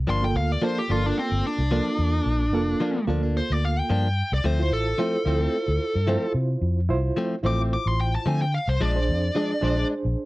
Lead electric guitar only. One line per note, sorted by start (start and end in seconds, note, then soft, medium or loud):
0.10 0.23 C6 loud
0.24 0.36 G5 medium
0.37 0.52 F5 medium
0.52 0.64 D5 medium
0.64 0.78 C5 medium
0.78 0.91 G4 medium
0.91 1.06 F4 medium
1.06 1.17 D4 medium
1.19 1.44 C4 medium
1.47 3.05 D4 medium
3.37 3.52 C5 loud
3.52 3.65 D5 medium
3.65 3.79 F5 medium
3.79 4.31 G5 medium
4.34 4.46 D5 loud
4.46 4.71 C5 medium
4.73 6.32 A4 loud
7.46 7.60 D6 loud
7.73 7.87 D6 loud
7.88 7.99 C6 medium
8.01 8.14 G5 medium
8.15 8.27 A5 loud
8.27 8.41 G#5 medium
8.42 8.53 G5 medium
8.54 8.68 F5 loud
8.69 8.81 C5 medium
8.81 9.87 D5 loud